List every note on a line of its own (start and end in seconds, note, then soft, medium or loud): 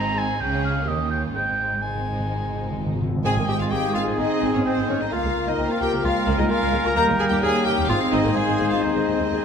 0.00 0.37 G#1 medium
0.00 0.13 G#2 medium
0.00 0.37 G#2 medium
0.00 0.37 C4 medium
0.00 0.37 D#4 medium
0.00 0.37 G#4 medium
0.00 0.19 A#5 loud
0.18 0.42 G#5 loud
0.40 0.87 C#2 medium
0.40 0.87 C#3 medium
0.40 0.86 C#4 medium
0.40 0.87 C#4 medium
0.40 0.86 G#4 medium
0.40 0.64 G5 medium
0.64 0.89 F5 medium
0.86 1.34 D#2 medium
0.86 1.34 D#3 medium
0.86 1.34 A#3 medium
0.86 1.34 C#4 medium
0.86 1.10 G4 medium
0.86 1.10 D#5 medium
1.11 1.35 F4 medium
1.11 1.21 G5 medium
1.34 3.01 G#1 medium
1.34 1.41 G#2 soft
1.34 3.01 G#2 medium
1.34 1.81 G#3 medium
1.34 1.81 C4 medium
1.34 1.82 D#4 soft
1.34 1.84 G5 medium
1.42 1.48 G#2 soft
1.50 1.56 G#2 soft
1.57 1.63 G#2 soft
1.64 1.71 G#2 soft
1.72 1.79 G#2 soft
1.80 1.87 G#2 soft
1.80 3.03 G#3 medium
1.80 3.03 C4 medium
1.80 3.03 D#4 medium
1.80 3.01 G#5 medium
1.88 1.94 G#2 soft
1.95 2.02 G#2 soft
2.03 2.09 G#2 soft
2.10 2.17 G#2 soft
2.18 2.25 G#2 soft
2.26 2.32 G#2 soft
2.33 2.40 G#2 soft
2.41 2.47 G#2 medium
2.48 2.55 G#2 medium
2.56 2.62 G#2 medium
2.63 2.70 G#2 medium
2.71 2.77 G#2 medium
2.78 2.85 G#2 medium
2.86 2.92 G#2 medium
2.94 3.01 G#2 medium
3.02 3.08 G#2 medium
3.09 3.15 G#2 medium
3.16 3.23 G#2 medium
3.24 3.30 G#1 medium
3.24 3.91 G#2 medium
3.24 4.15 G#3 medium
3.24 3.30 C4 medium
3.24 3.73 C4 medium
3.24 5.08 C4 medium
3.24 5.08 D#4 medium
3.24 5.08 G#4 medium
3.24 3.36 G#4 loud
3.24 3.69 D#5 medium
3.24 3.47 G#5 medium
3.24 3.33 G#5 medium
3.37 3.42 G#1 medium
3.37 3.42 A#3 soft
3.48 3.53 G#1 medium
3.48 3.53 C4 medium
3.48 3.54 G4 medium
3.48 3.54 G5 medium
3.48 3.60 G5 medium
3.59 3.64 G#1 medium
3.59 3.65 G#3 medium
3.59 3.74 F4 medium
3.59 3.65 F5 medium
3.59 3.66 F5 medium
3.71 3.76 G#1 medium
3.71 4.18 A#3 medium
3.71 3.76 C4 medium
3.71 3.96 G4 loud
3.71 4.21 D#5 medium
3.71 3.79 G5 medium
3.71 3.95 G5 medium
3.94 4.00 G#1 medium
3.94 4.00 C4 medium
3.94 4.20 F4 medium
3.94 4.03 F5 medium
3.94 4.19 F5 medium
4.06 4.12 G#1 medium
4.06 4.11 C4 medium
4.18 4.23 G#1 medium
4.18 4.65 G#3 medium
4.18 4.23 A#3 medium
4.18 5.10 C4 medium
4.18 4.54 D#4 medium
4.18 4.53 D#5 medium
4.18 4.65 G#5 medium
4.42 4.47 G#1 medium
4.42 4.47 C4 medium
4.54 4.59 G#1 medium
4.54 4.59 A#3 medium
4.54 4.65 C#4 medium
4.54 4.58 C#5 medium
4.54 4.66 C#5 medium
4.64 4.70 G#1 medium
4.64 5.13 G#3 medium
4.64 4.70 C4 medium
4.64 4.76 C4 medium
4.64 4.88 C5 medium
4.64 4.72 C5 medium
4.64 5.11 G5 medium
4.76 4.82 G#1 medium
4.76 4.81 C4 medium
4.88 4.93 G#1 soft
4.88 4.94 A#3 medium
4.88 5.03 C#4 medium
4.88 5.00 C#5 medium
4.88 5.01 C#5 medium
5.00 5.05 G#1 medium
5.00 5.05 C4 medium
5.00 5.14 D#4 medium
5.00 5.12 D#5 medium
5.12 5.17 C#2 medium
5.12 5.57 A#3 medium
5.12 5.58 A#3 medium
5.12 6.92 A#3 medium
5.12 5.17 A#3 medium
5.12 6.92 F4 medium
5.12 5.50 F4 loud
5.12 7.85 A#4 medium
5.12 6.96 A#4 medium
5.12 5.47 F5 medium
5.12 6.52 F5 medium
5.12 5.47 F5 medium
5.24 5.28 C#2 medium
5.24 5.28 G#3 medium
5.35 5.40 C#2 medium
5.35 5.40 A#3 medium
5.46 5.51 C#2 medium
5.46 5.52 F3 medium
5.46 5.73 D#4 medium
5.46 5.70 D#5 medium
5.58 5.63 C#2 medium
5.58 6.03 A#3 medium
5.58 5.63 A#3 medium
5.58 6.51 C4 medium
5.69 5.81 F4 medium
5.69 5.81 F5 medium
5.80 5.86 C#2 medium
5.80 5.86 A#3 medium
5.80 6.04 G4 medium
5.80 6.04 G5 medium
5.80 5.90 G5 medium
5.92 5.97 C#2 medium
5.92 5.97 A#3 medium
6.04 6.08 C#2 medium
6.04 6.96 G#3 medium
6.04 6.09 G#3 medium
6.04 6.41 F4 loud
6.04 6.38 F5 medium
6.27 6.32 C#2 medium
6.27 6.31 A#3 medium
6.38 6.43 C#2 medium
6.38 6.43 G#3 medium
6.38 6.52 D#4 medium
6.38 6.43 D#5 medium
6.38 6.50 D#5 medium
6.50 6.55 C#2 medium
6.50 6.54 A#3 medium
6.50 6.95 A#3 medium
6.50 6.88 F4 loud
6.50 6.84 F5 medium
6.50 6.98 G#5 medium
6.61 6.66 C#2 medium
6.61 6.66 A#3 medium
6.73 6.77 C#2 medium
6.73 6.77 G#3 medium
6.84 6.89 C#2 medium
6.84 6.89 A#3 medium
6.84 6.96 A#4 loud
6.84 6.95 A#5 medium
6.84 6.94 A#5 medium
6.84 6.95 A#5 medium
6.95 7.00 D#2 medium
6.95 7.41 G3 medium
6.95 7.85 G3 medium
6.95 7.00 A#3 medium
6.95 7.44 A#3 medium
6.95 9.45 D#4 medium
6.95 7.87 G4 medium
6.95 7.07 A#4 loud
6.95 7.44 G5 medium
6.95 7.18 A#5 loud
6.95 7.04 A#5 loud
7.07 7.12 D#2 medium
7.07 7.12 G#3 medium
7.18 7.23 D#2 medium
7.18 7.23 A#3 medium
7.18 7.25 G#4 loud
7.18 7.24 G#5 medium
7.18 7.30 G#5 medium
7.18 7.24 G#5 medium
7.30 7.35 D#2 medium
7.30 7.34 G3 medium
7.30 7.37 G4 loud
7.30 7.35 G5 medium
7.30 7.42 G5 medium
7.42 7.47 D#2 medium
7.42 7.89 A#3 medium
7.42 7.47 A#3 medium
7.42 7.90 C#4 medium
7.42 7.65 G#4 loud
7.42 7.91 F5 medium
7.42 7.65 G#5 loud
7.65 7.70 D#2 medium
7.65 7.70 A#3 medium
7.65 7.89 G4 loud
7.65 7.71 G5 medium
7.65 7.88 G5 medium
7.65 7.89 G5 loud
7.76 7.82 D#2 loud
7.76 7.81 A#3 medium
7.88 7.94 G#1 medium
7.88 9.45 G#3 loud
7.88 7.93 A#3 medium
7.88 8.34 C4 medium
7.88 8.37 C4 medium
7.88 8.00 F4 loud
7.88 9.25 G#4 medium
7.88 9.45 C5 loud
7.88 8.35 D#5 medium
7.88 7.95 F5 medium
7.88 8.12 F5 medium
7.88 8.12 F5 loud
8.11 8.17 G#1 medium
8.11 8.16 C4 medium
8.11 8.35 D#4 medium
8.11 8.35 D#5 medium
8.11 8.36 D#5 medium
8.24 8.29 G#1 medium
8.24 8.28 A#3 medium
8.35 8.41 G#1 medium
8.35 8.82 G#3 medium
8.35 8.82 A#3 medium
8.35 8.40 C4 medium
8.35 8.70 G#4 medium
8.35 8.84 D#5 medium
8.35 8.70 G#5 medium
8.35 8.71 G#5 medium
8.47 8.52 G#1 medium
8.47 8.52 C4 medium
8.59 8.64 G#1 soft
8.59 8.64 A#3 medium
8.70 8.76 G#1 soft
8.70 8.76 C4 medium
8.70 8.85 F4 medium
8.70 8.82 F5 medium
8.70 8.83 F5 medium
8.82 8.88 D#2 medium
8.82 9.45 G#3 medium
8.82 9.45 C4 medium
8.82 8.88 C4 medium
8.82 9.45 D#4 medium
8.82 9.45 C5 medium
8.82 9.45 D#5 medium
8.95 9.00 D#2 soft
8.95 9.00 A#3 soft
9.07 9.11 D#2 soft
9.07 9.12 C4 soft
9.19 9.24 D#2 soft
9.19 9.24 G#3 soft
9.30 9.35 D#2 medium
9.30 9.45 G#4 medium